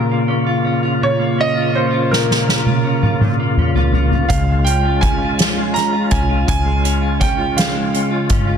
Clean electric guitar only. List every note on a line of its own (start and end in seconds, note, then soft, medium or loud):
0.00 1.01 A#2 medium
0.00 3.24 A#4 medium
0.11 1.18 A#3 soft
0.28 0.64 C#4 medium
0.47 0.83 F4 medium
0.65 1.38 C#4 soft
0.83 1.55 F4 medium
1.02 2.09 A#2 medium
1.20 2.27 A#3 medium
1.38 1.73 C#4 soft
1.55 1.91 F4 medium
1.74 2.47 C#4 soft
1.91 2.65 F4 medium
2.10 3.20 A#2 medium
2.29 3.38 A#3 soft
2.47 2.84 C#4 medium
2.65 3.03 F4 soft
2.84 3.58 C#4 soft
3.03 3.75 F4 soft
3.22 4.29 A#2 medium
3.40 4.38 A#3 medium
3.59 3.94 C#4 soft
3.76 4.12 F4 medium
3.95 4.67 C#4 soft
4.12 4.85 F4 soft
4.30 5.39 C#3 medium
4.49 5.57 G#3 soft
4.68 5.02 C#4 medium
4.85 5.21 F4 soft
5.03 5.74 C#4 soft
5.22 5.92 F4 medium
5.57 6.65 G#3 medium
5.75 6.11 C#4 soft
5.93 6.28 F4 medium
6.12 6.83 C#4 soft
6.29 7.00 F4 medium
6.47 7.54 C#3 medium
6.65 7.74 G#3 soft
6.84 7.18 C#4 soft
7.01 7.37 F4 soft
7.20 7.92 C#4 medium
7.38 8.10 F4 medium
7.55 8.58 C#3 medium
7.75 8.58 G#3 medium
7.94 8.29 C#4 medium
8.11 8.46 F4 medium
8.30 8.58 C#4 soft
8.47 8.58 F4 medium